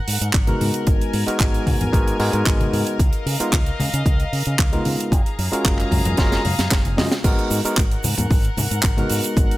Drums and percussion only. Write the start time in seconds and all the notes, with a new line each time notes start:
0.08 open hi-hat
0.22 closed hi-hat
0.33 kick, clap, closed hi-hat
0.47 closed hi-hat, high conga
0.61 open hi-hat, high conga
0.74 closed hi-hat
0.87 kick, closed hi-hat
1.01 closed hi-hat
1.13 open hi-hat
1.28 closed hi-hat
1.40 kick, clap, closed hi-hat
1.54 closed hi-hat
1.67 kick, open hi-hat, high conga
1.81 closed hi-hat, low conga
1.93 kick, closed hi-hat
2.08 closed hi-hat
2.20 open hi-hat
2.33 closed hi-hat
2.46 kick, clap, closed hi-hat
2.61 closed hi-hat, high conga
2.73 open hi-hat, high conga
2.87 closed hi-hat
2.99 kick, closed hi-hat
3.13 closed hi-hat
3.27 open hi-hat
3.40 closed hi-hat
3.52 kick, clap, closed hi-hat
3.66 closed hi-hat
3.80 open hi-hat, high conga
3.94 closed hi-hat
4.06 kick, closed hi-hat
4.20 closed hi-hat
4.33 open hi-hat
4.46 closed hi-hat
4.58 kick, clap, closed hi-hat
4.73 closed hi-hat, high conga
4.85 open hi-hat, high conga
5.00 closed hi-hat
5.12 kick, closed hi-hat
5.26 closed hi-hat
5.39 open hi-hat
5.53 closed hi-hat
5.65 kick, clap, closed hi-hat
5.79 clap, closed hi-hat
5.92 kick, open hi-hat, high conga
6.05 closed hi-hat, low conga
6.17 kick, snare, closed hi-hat
6.32 snare, closed hi-hat
6.45 open hi-hat, high conga
6.59 snare, closed hi-hat
6.71 kick, snare, clap, closed hi-hat
6.85 closed hi-hat, high conga
6.98 snare, open hi-hat, high conga
7.12 snare, closed hi-hat
7.24 kick, closed hi-hat, crash, shaker
7.39 closed hi-hat
7.51 open hi-hat, shaker
7.65 closed hi-hat, shaker
7.77 kick, clap, closed hi-hat, shaker
7.91 closed hi-hat
8.04 open hi-hat, high conga, shaker
8.18 closed hi-hat, low conga, shaker
8.31 kick, open hi-hat, shaker
8.45 closed hi-hat
8.58 open hi-hat, high conga, shaker
8.71 closed hi-hat, shaker
8.83 kick, clap, closed hi-hat, shaker
8.98 closed hi-hat, high conga
9.10 open hi-hat, shaker
9.24 closed hi-hat, shaker
9.37 kick, closed hi-hat, shaker
9.51 closed hi-hat